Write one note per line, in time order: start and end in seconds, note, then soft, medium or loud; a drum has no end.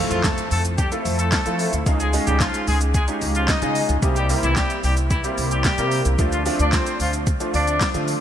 0.00 0.74 A3 medium
0.00 0.74 C4 medium
0.00 0.75 E4 medium
0.00 0.75 F4 medium
0.00 0.75 A4 loud
0.00 impact medium
0.11 0.30 F2 loud
0.11 0.22 F3 medium
0.11 0.22 F4 medium
0.11 closed hi-hat medium
0.11 shaker medium
0.24 0.47 A3 medium
0.24 0.46 A4 medium
0.24 kick loud
0.24 snare loud
0.24 clap loud
0.24 closed hi-hat medium
0.24 shaker medium
0.38 closed hi-hat medium
0.38 shaker medium
0.51 0.89 F2 medium
0.51 0.63 A3 medium
0.51 0.62 A4 medium
0.51 open hi-hat medium
0.51 shaker medium
0.65 closed hi-hat medium
0.65 shaker medium
0.78 0.90 G3 medium
0.78 0.89 G4 medium
0.78 kick loud
0.78 closed hi-hat medium
0.78 shaker medium
0.92 1.36 A3 medium
0.92 1.36 C4 medium
0.92 1.36 E4 medium
0.92 1.36 F4 medium
0.92 1.36 A4 medium
0.92 closed hi-hat medium
0.92 shaker medium
1.05 1.34 F2 medium
1.05 open hi-hat medium
1.05 shaker medium
1.19 1.30 A3 medium
1.19 1.30 A4 medium
1.19 closed hi-hat medium
1.19 shaker medium
1.32 1.71 A3 medium
1.32 1.70 A4 medium
1.32 kick loud
1.32 snare loud
1.32 clap loud
1.32 closed hi-hat medium
1.32 shaker medium
1.46 1.65 F3 medium
1.46 1.79 A3 medium
1.46 1.79 C4 medium
1.46 1.79 E4 medium
1.46 1.79 F4 medium
1.46 1.79 A4 medium
1.46 closed hi-hat medium
1.46 shaker medium
1.59 open hi-hat medium
1.59 shaker medium
1.59 shaker soft
1.73 1.82 D2 medium
1.73 closed hi-hat medium
1.73 shaker medium
1.86 2.15 C#2 loud
1.86 2.08 G#3 medium
1.86 2.08 C#4 medium
1.86 2.08 D#4 medium
1.86 2.09 F4 medium
1.86 2.09 G#4 medium
1.86 kick loud
1.86 closed hi-hat medium
1.86 shaker medium
2.00 2.11 G#3 medium
2.00 2.11 G#4 medium
2.00 closed hi-hat medium
2.00 shaker soft
2.00 shaker medium
2.13 2.91 G#3 medium
2.13 2.91 C#4 medium
2.13 2.91 D#4 medium
2.13 2.91 F4 medium
2.13 2.91 G#4 loud
2.13 open hi-hat medium
2.13 shaker medium
2.27 2.46 C#2 loud
2.27 2.38 G3 medium
2.27 2.38 G4 medium
2.27 closed hi-hat soft
2.27 shaker medium
2.40 2.63 F3 medium
2.40 2.62 F4 medium
2.40 kick loud
2.40 snare loud
2.40 clap loud
2.40 closed hi-hat medium
2.40 shaker medium
2.54 closed hi-hat medium
2.54 shaker medium
2.67 3.05 C#2 medium
2.67 2.79 G#3 medium
2.67 2.78 G#4 medium
2.67 open hi-hat medium
2.67 shaker medium
2.67 shaker soft
2.81 closed hi-hat medium
2.81 shaker medium
2.94 3.06 G#3 medium
2.94 3.05 G#4 medium
2.94 kick loud
2.94 closed hi-hat medium
2.94 shaker medium
3.08 3.52 G#3 medium
3.08 3.52 C#4 medium
3.08 3.52 D#4 medium
3.08 3.52 F4 medium
3.08 3.52 G4 medium
3.08 closed hi-hat medium
3.08 shaker medium
3.21 3.50 C#2 loud
3.21 open hi-hat medium
3.21 shaker medium
3.35 3.46 F3 medium
3.35 3.46 F4 medium
3.35 closed hi-hat medium
3.35 shaker medium
3.48 3.87 D#4 medium
3.48 3.87 D#5 medium
3.48 kick loud
3.48 snare loud
3.48 clap loud
3.48 closed hi-hat medium
3.48 shaker medium
3.62 3.81 C#3 medium
3.62 3.95 G#3 medium
3.62 3.95 C#4 medium
3.62 3.95 D#4 medium
3.62 3.95 F4 medium
3.62 3.95 G#4 medium
3.62 closed hi-hat medium
3.62 shaker medium
3.75 open hi-hat medium
3.75 shaker medium
3.75 shaker soft
3.89 3.98 C#2 loud
3.89 closed hi-hat medium
3.89 shaker medium
4.02 4.31 C2 loud
4.02 4.25 G3 medium
4.02 4.25 A#3 medium
4.02 4.25 C4 medium
4.02 4.25 E4 medium
4.02 4.25 G4 medium
4.02 kick loud
4.02 closed hi-hat medium
4.02 shaker medium
4.16 4.27 G3 medium
4.16 4.27 G4 medium
4.16 closed hi-hat medium
4.16 shaker soft
4.16 shaker medium
4.29 5.07 G3 medium
4.29 5.07 A#3 medium
4.29 5.07 C4 medium
4.29 5.07 E4 medium
4.29 5.07 G4 medium
4.29 open hi-hat medium
4.29 shaker medium
4.43 4.62 C2 loud
4.43 4.55 E3 medium
4.43 4.54 E4 medium
4.43 closed hi-hat medium
4.43 shaker medium
4.56 4.79 G3 medium
4.56 4.78 G4 medium
4.56 kick loud
4.56 snare loud
4.56 clap loud
4.56 closed hi-hat medium
4.56 shaker medium
4.70 closed hi-hat medium
4.70 shaker medium
4.84 5.21 C2 loud
4.84 4.95 G3 medium
4.84 4.95 G4 medium
4.84 open hi-hat medium
4.84 shaker medium
4.97 closed hi-hat medium
4.97 shaker medium
5.11 5.22 E3 medium
5.11 5.22 E4 medium
5.11 kick loud
5.11 closed hi-hat medium
5.11 shaker medium
5.24 5.68 G3 medium
5.24 5.68 A#3 medium
5.24 5.68 C4 medium
5.24 5.68 E4 medium
5.24 5.69 G4 medium
5.24 closed hi-hat medium
5.24 shaker medium
5.38 5.66 C2 loud
5.38 open hi-hat medium
5.38 shaker medium
5.51 5.63 G3 medium
5.51 5.62 G4 medium
5.51 closed hi-hat medium
5.51 shaker medium
5.64 6.03 G3 medium
5.64 6.03 G4 medium
5.64 kick loud
5.64 snare loud
5.64 clap loud
5.64 closed hi-hat medium
5.64 shaker medium
5.78 5.97 C3 medium
5.78 6.11 G3 medium
5.78 6.11 A#3 medium
5.78 6.11 C4 medium
5.78 6.11 E4 medium
5.78 6.12 A#4 medium
5.78 closed hi-hat medium
5.78 shaker medium
5.91 open hi-hat medium
5.91 shaker medium
5.91 shaker soft
6.05 6.15 C2 medium
6.05 closed hi-hat medium
6.05 shaker medium
6.05 shaker soft
6.19 6.47 D2 loud
6.19 6.41 F3 medium
6.19 6.41 A3 medium
6.19 6.41 C4 medium
6.19 6.41 D4 medium
6.19 6.41 F4 medium
6.19 kick loud
6.19 closed hi-hat medium
6.19 shaker medium
6.32 6.44 F3 medium
6.32 6.43 F4 medium
6.32 closed hi-hat medium
6.32 shaker medium
6.45 7.23 F3 medium
6.45 7.23 A3 medium
6.45 7.23 C4 medium
6.45 7.23 D4 medium
6.45 7.23 F4 loud
6.45 open hi-hat medium
6.45 shaker medium
6.59 6.78 D2 loud
6.59 6.70 D4 medium
6.59 6.71 D5 medium
6.59 closed hi-hat soft
6.59 shaker medium
6.73 6.95 C4 medium
6.73 6.95 C5 medium
6.73 kick loud
6.73 snare loud
6.73 clap loud
6.73 closed hi-hat medium
6.73 shaker medium
6.86 closed hi-hat medium
6.86 shaker medium
7.00 7.38 D2 medium
7.00 7.11 F3 medium
7.00 7.11 F4 medium
7.00 open hi-hat medium
7.00 shaker medium
7.13 closed hi-hat medium
7.13 shaker medium
7.27 kick loud
7.27 closed hi-hat medium
7.27 shaker medium
7.40 7.85 F3 medium
7.40 7.85 A3 medium
7.40 7.85 C4 medium
7.40 7.85 D4 medium
7.40 7.85 F4 medium
7.40 closed hi-hat medium
7.40 shaker medium
7.54 7.82 D2 loud
7.54 7.92 D4 medium
7.54 7.92 D5 medium
7.54 open hi-hat medium
7.54 shaker medium
7.67 closed hi-hat medium
7.67 shaker medium
7.81 kick loud
7.81 snare loud
7.81 clap loud
7.81 closed hi-hat medium
7.81 shaker medium
7.94 8.13 D3 medium
7.94 8.21 F3 medium
7.94 8.21 A3 medium
7.94 8.21 C4 medium
7.94 8.21 D4 medium
7.94 8.21 F4 medium
7.94 closed hi-hat medium
7.94 shaker medium
8.08 open hi-hat medium
8.08 shaker medium
8.08 shaker soft